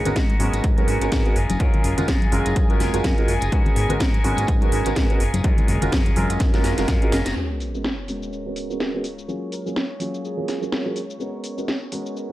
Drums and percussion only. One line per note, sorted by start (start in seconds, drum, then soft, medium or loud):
0.05 closed hi-hat soft
0.05 tambourine medium
0.05 low conga medium
0.16 kick loud
0.16 snare loud
0.16 closed hi-hat soft
0.29 closed hi-hat soft
0.29 tambourine soft
0.29 high conga medium
0.40 open hi-hat loud
0.40 high conga medium
0.53 closed hi-hat soft
0.53 tambourine medium
0.64 kick loud
0.64 closed hi-hat medium
0.64 tambourine medium
0.78 closed hi-hat soft
0.78 tambourine soft
0.78 high conga medium
0.88 open hi-hat loud
1.01 closed hi-hat soft
1.01 tambourine medium
1.12 kick loud
1.12 snare loud
1.12 closed hi-hat soft
1.12 tambourine medium
1.26 closed hi-hat soft
1.26 tambourine soft
1.36 open hi-hat loud
1.49 closed hi-hat soft
1.49 tambourine medium
1.49 high conga medium
1.60 kick loud
1.60 closed hi-hat medium
1.74 closed hi-hat soft
1.74 tambourine soft
1.74 low conga medium
1.84 open hi-hat loud
1.98 closed hi-hat soft
1.98 tambourine medium
1.98 low conga medium
2.08 kick loud
2.08 snare loud
2.08 closed hi-hat soft
2.08 tambourine medium
2.22 closed hi-hat soft
2.22 tambourine soft
2.22 high conga medium
2.32 open hi-hat loud
2.32 high conga medium
2.46 closed hi-hat soft
2.46 tambourine medium
2.56 kick loud
2.56 closed hi-hat medium
2.56 tambourine medium
2.70 closed hi-hat soft
2.70 tambourine soft
2.80 snare medium
2.80 open hi-hat loud
2.94 closed hi-hat medium
2.94 tambourine medium
3.04 kick loud
3.04 snare loud
3.04 closed hi-hat medium
3.04 tambourine medium
3.18 closed hi-hat soft
3.18 tambourine soft
3.28 open hi-hat loud
3.41 closed hi-hat medium
3.41 tambourine medium
3.52 kick loud
3.52 closed hi-hat medium
3.65 closed hi-hat soft
3.65 tambourine soft
3.65 low conga medium
3.76 open hi-hat loud
3.89 closed hi-hat soft
3.89 tambourine medium
3.89 low conga medium
3.99 kick loud
3.99 snare loud
3.99 closed hi-hat medium
3.99 tambourine medium
4.13 closed hi-hat soft
4.13 tambourine soft
4.13 high conga medium
4.24 open hi-hat loud
4.24 high conga medium
4.37 closed hi-hat medium
4.37 tambourine medium
4.47 kick loud
4.47 closed hi-hat medium
4.47 tambourine medium
4.61 closed hi-hat soft
4.61 tambourine soft
4.61 high conga medium
4.72 open hi-hat loud
4.85 closed hi-hat medium
4.85 tambourine medium
4.95 kick loud
4.95 snare loud
4.95 closed hi-hat medium
4.95 tambourine medium
5.10 closed hi-hat soft
5.10 tambourine soft
5.20 open hi-hat loud
5.34 closed hi-hat medium
5.34 tambourine medium
5.34 high conga medium
5.44 kick loud
5.44 closed hi-hat medium
5.44 tambourine medium
5.58 closed hi-hat soft
5.58 tambourine soft
5.58 low conga medium
5.68 open hi-hat loud
5.82 closed hi-hat medium
5.82 tambourine medium
5.82 low conga medium
5.92 kick loud
5.92 snare loud
5.92 closed hi-hat medium
6.06 closed hi-hat soft
6.06 tambourine soft
6.06 high conga medium
6.16 open hi-hat loud
6.16 high conga medium
6.30 closed hi-hat medium
6.30 tambourine medium
6.39 kick loud
6.39 snare medium
6.39 closed hi-hat medium
6.39 tambourine medium
6.53 snare medium
6.53 closed hi-hat soft
6.53 tambourine soft
6.64 snare medium
6.64 open hi-hat loud
6.77 snare medium
6.77 closed hi-hat medium
6.77 tambourine medium
6.88 kick loud
6.88 snare medium
6.88 closed hi-hat medium
6.88 tambourine medium
7.02 closed hi-hat soft
7.02 tambourine soft
7.12 snare medium
7.12 open hi-hat loud
7.25 snare medium
7.25 closed hi-hat medium
7.25 tambourine medium
7.37 shaker soft
7.60 open hi-hat medium
7.60 shaker medium
7.75 shaker soft
7.84 snare loud
7.84 shaker soft
8.08 open hi-hat medium
8.08 shaker medium
8.22 shaker soft
8.33 shaker soft
8.56 open hi-hat medium
8.56 shaker medium
8.70 shaker soft
8.80 snare loud
8.80 shaker soft
9.04 open hi-hat medium
9.04 shaker medium
9.18 shaker soft
9.29 shaker soft
9.52 open hi-hat loud
9.52 shaker medium
9.67 shaker soft
9.76 snare loud
9.76 shaker soft
10.00 open hi-hat loud
10.00 shaker medium
10.14 shaker soft
10.25 shaker soft
10.48 snare medium
10.48 open hi-hat loud
10.48 shaker medium
10.63 shaker soft
10.72 snare loud
10.72 shaker soft
10.96 open hi-hat medium
10.96 shaker medium
11.10 shaker soft
11.20 shaker soft
11.44 open hi-hat loud
11.44 shaker medium
11.58 shaker soft
11.68 snare loud
11.68 shaker soft
11.92 open hi-hat loud
11.92 shaker medium
12.06 shaker soft
12.17 shaker soft